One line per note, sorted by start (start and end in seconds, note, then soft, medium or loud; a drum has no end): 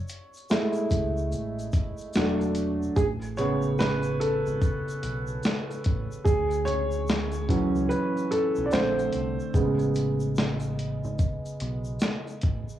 0.00 2.17 C#5 medium
0.08 closed hi-hat medium
0.08 shaker medium
0.08 shaker soft
0.34 shaker medium
0.37 shaker medium
0.49 1.09 G#3 medium
0.49 1.10 A3 medium
0.49 1.10 E4 medium
0.49 snare loud
0.49 shaker medium
0.53 shaker medium
0.73 shaker soft
0.75 shaker medium
0.90 1.34 C#2 medium
0.90 kick medium
0.90 closed hi-hat medium
0.90 shaker medium
1.17 shaker soft
1.32 1.69 A1 medium
1.32 shaker medium
1.59 shaker soft
1.59 shaker medium
1.72 kick medium
1.72 closed hi-hat medium
1.72 shaker medium
1.74 shaker medium
1.98 shaker soft
2.01 shaker soft
2.13 2.88 E1 medium
2.13 2.93 F#3 medium
2.13 2.93 A3 medium
2.13 2.94 D4 medium
2.13 snare loud
2.13 shaker medium
2.41 shaker soft
2.55 closed hi-hat medium
2.55 shaker soft
2.55 shaker medium
2.83 shaker medium
2.96 4.42 A1 loud
2.96 3.05 G#4 medium
2.96 kick loud
2.96 shaker medium
3.22 shaker soft
3.23 shaker soft
3.37 6.22 C#3 medium
3.37 6.22 B3 medium
3.37 6.22 G#4 soft
3.37 3.46 C#5 loud
3.37 closed hi-hat medium
3.37 shaker medium
3.37 shaker soft
3.62 shaker medium
3.79 3.88 B4 loud
3.79 snare loud
3.79 shaker medium
3.82 shaker medium
4.02 shaker soft
4.02 shaker medium
4.20 4.98 A4 medium
4.20 closed hi-hat medium
4.20 shaker medium
4.47 4.60 G#1 medium
4.47 shaker soft
4.62 kick loud
4.62 shaker medium
4.88 shaker soft
4.90 shaker medium
5.03 5.39 B1 medium
5.03 closed hi-hat medium
5.03 shaker medium
5.27 shaker soft
5.43 snare loud
5.43 shaker medium
5.71 shaker soft
5.84 6.09 A1 medium
5.84 kick medium
5.84 closed hi-hat medium
5.84 shaker soft
6.12 shaker soft
6.25 7.71 D2 loud
6.25 6.63 G#4 medium
6.25 kick loud
6.25 shaker medium
6.51 shaker soft
6.53 shaker soft
6.65 7.44 C#5 loud
6.65 closed hi-hat medium
6.65 shaker soft
6.68 shaker soft
6.92 shaker medium
7.08 snare loud
7.08 shaker medium
7.11 shaker medium
7.31 shaker soft
7.33 shaker medium
7.49 8.68 E3 medium
7.49 8.68 F#3 medium
7.49 8.69 C#4 medium
7.49 kick medium
7.49 closed hi-hat medium
7.49 shaker soft
7.76 7.88 C#2 medium
7.76 shaker soft
7.89 7.99 B4 medium
7.89 shaker medium
8.17 shaker soft
8.31 8.68 A4 medium
8.31 closed hi-hat medium
8.31 shaker soft
8.56 8.71 B1 medium
8.56 shaker medium
8.66 8.72 D5 medium
8.71 9.09 A#1 loud
8.71 9.50 D3 medium
8.71 9.51 A3 medium
8.71 9.51 C4 medium
8.71 9.36 C5 medium
8.71 snare loud
8.71 shaker medium
8.99 shaker soft
9.12 9.37 C2 medium
9.12 closed hi-hat medium
9.12 shaker soft
9.40 shaker soft
9.54 11.00 A1 loud
9.54 12.79 C#3 medium
9.54 12.79 G#3 soft
9.54 12.79 B3 medium
9.54 kick loud
9.54 shaker medium
9.79 shaker soft
9.81 shaker soft
9.95 closed hi-hat medium
9.95 shaker medium
9.95 shaker soft
10.20 shaker medium
10.36 snare loud
10.36 shaker medium
10.40 shaker medium
10.60 shaker soft
10.61 shaker medium
10.79 closed hi-hat medium
10.79 shaker medium
11.04 11.17 G#1 loud
11.04 shaker soft
11.19 kick medium
11.19 shaker medium
11.19 shaker soft
11.45 shaker soft
11.45 shaker medium
11.60 11.97 B1 medium
11.60 closed hi-hat medium
11.60 shaker medium
11.85 shaker soft
11.99 snare loud
11.99 shaker medium
12.27 shaker soft
12.29 shaker soft
12.42 12.66 A1 medium
12.42 kick medium
12.42 closed hi-hat medium
12.42 shaker medium
12.69 shaker soft